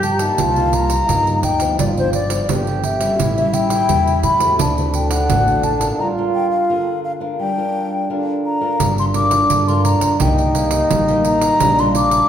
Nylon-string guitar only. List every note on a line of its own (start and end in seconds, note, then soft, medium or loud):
0.00 0.36 G2 medium
0.20 0.50 G3 medium
0.20 0.50 A#3 medium
0.20 0.50 D#4 medium
0.39 1.05 C3 medium
0.57 1.04 G3 medium
0.57 1.04 A#3 medium
0.57 1.04 D#4 medium
1.09 1.76 G2 medium
1.09 1.42 G3 medium
1.09 1.42 A#3 medium
1.09 1.42 D#4 medium
1.60 1.90 F3 medium
1.60 1.90 B3 medium
1.60 1.91 D4 medium
1.79 2.46 G2 medium
1.98 2.44 F3 medium
1.98 2.44 B3 medium
1.98 2.45 D4 medium
2.49 3.16 D3 medium
2.49 2.82 F3 medium
2.49 2.83 B3 medium
2.49 2.83 D4 medium
3.00 3.30 G3 medium
3.00 3.31 C#4 medium
3.00 3.31 E4 medium
3.20 3.86 A2 medium
3.37 3.84 G3 medium
3.37 3.84 C#4 medium
3.37 3.85 E4 medium
3.89 4.56 E3 medium
3.89 4.36 G3 medium
3.89 4.36 C#4 medium
3.89 4.37 E4 medium
4.40 4.70 A3 medium
4.40 4.71 C4 medium
4.40 4.71 F#4 medium
4.59 5.26 D3 medium
4.77 5.24 A3 medium
4.77 5.24 C4 medium
4.77 5.24 F#4 medium
5.29 5.96 A2 medium
5.29 5.62 A3 medium
5.29 5.62 C4 medium
5.29 5.63 F#4 medium
5.80 6.11 D4 medium
5.80 6.11 F4 medium
5.80 6.11 A#4 medium
5.99 6.66 G3 medium
6.18 6.64 D4 medium
6.18 6.65 F4 medium
6.18 6.65 A#4 medium
6.70 7.36 D3 medium
6.70 7.17 D4 medium
6.70 7.17 F4 medium
6.70 7.17 A#4 medium
7.20 7.51 D4 soft
7.20 7.51 F4 medium
7.20 7.51 A#4 medium
7.39 8.06 G3 medium
7.57 8.04 D4 medium
7.57 8.05 F4 medium
7.57 8.05 A#4 medium
8.10 8.76 D3 soft
8.10 8.57 D4 medium
8.10 8.57 F4 medium
8.10 8.57 A#4 medium
8.61 8.91 D4 medium
8.61 8.91 F4 medium
8.61 8.91 A#4 medium
8.80 9.46 G3 medium
9.14 9.48 D4 medium
9.14 9.48 F4 medium
9.14 9.48 A#4 medium
9.50 10.17 D3 medium
9.68 10.15 D4 medium
9.68 10.15 F4 medium
9.68 10.15 A#4 medium
10.20 10.87 C3 medium
10.20 10.41 A#3 medium
10.20 10.41 D#4 medium
10.20 10.41 G4 medium
10.54 11.02 A#3 medium
10.54 11.02 D#4 medium
10.54 11.02 G4 medium
10.90 11.57 G3 medium
11.08 11.55 A#3 medium
11.08 11.55 D#4 medium
11.08 11.55 G4 medium
11.60 12.27 A#2 medium
11.60 11.71 G3 medium
11.60 11.71 D4 medium
11.60 11.71 F4 medium
11.79 12.25 G3 medium
11.79 12.25 D4 medium
11.79 12.26 F4 medium